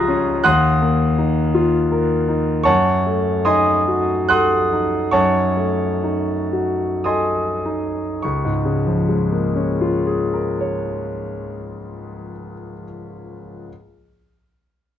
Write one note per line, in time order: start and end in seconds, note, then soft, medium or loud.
0.00 0.41 C#2 medium
0.00 0.46 F3 soft
0.00 0.46 F4 soft
0.00 0.46 G#4 soft
0.00 0.46 A#5 medium
0.00 0.45 C6 medium
0.00 0.44 D#6 medium
0.00 0.46 F6 medium
0.00 0.44 F#6 medium
0.00 0.46 G#6 medium
0.00 0.46 A#6 loud
0.00 0.46 C7 medium
0.08 0.45 C#4 soft
0.44 2.63 D#2 medium
0.44 1.13 F#5 medium
0.44 1.14 C6 medium
0.44 1.14 D#6 medium
0.44 1.17 F#6 medium
0.82 1.40 A#3 soft
1.18 1.77 D#4 soft
1.55 2.13 F4 soft
1.92 2.51 A#4 soft
2.29 2.66 D#4 soft
2.64 5.09 F#2 soft
2.64 3.41 C#5 medium
2.64 3.41 F#5 medium
2.64 3.41 A5 medium
2.64 3.44 C#6 medium
3.07 3.71 A3 soft
3.45 4.13 D#4 soft
3.45 4.25 D#5 medium
3.45 4.25 G#5 medium
3.45 4.25 C6 medium
3.45 4.28 D#6 medium
3.88 4.55 F#4 soft
4.28 4.96 A4 soft
4.28 5.09 F#5 medium
4.28 5.09 C6 medium
4.28 5.09 D#6 medium
4.28 5.12 F#6 medium
4.73 5.40 D#4 soft
5.11 8.18 F#2 medium
5.11 7.00 C#5 medium
5.11 7.00 F#5 medium
5.11 7.00 A5 medium
5.11 7.03 C#6 medium
5.57 6.31 A3 soft
6.04 6.83 D#4 soft
6.52 7.39 F#4 soft
7.04 8.01 A4 soft
7.04 8.19 D#5 soft
7.04 8.18 G#5 soft
7.04 8.19 C6 soft
7.04 8.22 D#6 medium
7.66 8.23 D#4 soft
8.23 12.32 C#2 soft
8.23 12.30 C#6 soft
8.45 12.53 G#2 soft
8.65 12.73 C#3 soft
8.87 12.84 F3 soft
9.09 12.84 G#3 soft
9.32 12.84 A#3 soft
9.56 12.84 C#4 soft
9.81 12.84 F4 soft
10.06 12.84 G#4 soft
10.34 12.84 A#4 soft
10.60 12.84 C#5 soft